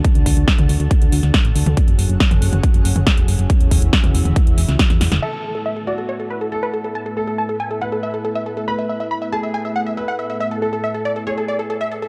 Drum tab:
CC |----------------|----------------|----------------|x---------------|
HH |xxox-xoxxxoxxxox|xxox-xoxxxoxxxox|xxoxxxoxxxoxxxox|xx-x-xxxxxxxxxxx|
SD |----o------oo---|----o-------o---|----o------ooooo|----------------|
T2 |-----o---------o|-----o-o---o----|-----o-o-------o|----------------|
BD |o-o-o---o---o---|o---o---o---o---|o-o-o---o---o---|----------------|

CC |----------------|----------------|----------------|
HH |xx-x-xxxxxxxxxxx|xx-x-xxxxxxxxxxx|xx-xxxxxxxxxxxxx|
SD |----------------|----------------|----------------|
T2 |----------------|----------------|----------------|
BD |----------------|----------------|----------------|